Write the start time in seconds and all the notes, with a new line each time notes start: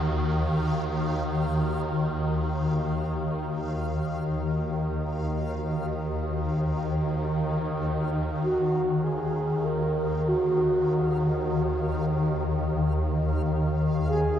Already playing: D#2 D#3 A#3 F#4 F5
7.78 D#2 D#3 F5
8.42 F#4
9.04 G#4
9.65 A#4
10.28 F#4
14.07 G#4